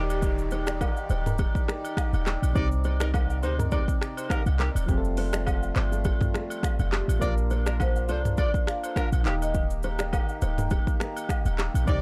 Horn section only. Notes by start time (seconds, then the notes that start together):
2.56 D#4 G4 D5
3.01 D#4 G4 A#4
3.43 D#4 G4 C5
3.72 D#4 G4 D5
4.17 D#4 G4 C5
4.30 D#4 G4 A#4
4.59 G3 D#4 G4
7.21 F4 A#4 D5
7.66 D4 F4 A#4
8.09 F4 A4 C5
8.38 F4 A#4 D5
8.83 F4 A4 C5
8.96 D4 F4 A#4
9.25 G3 D#4 G4
11.88 D#4 G4 D5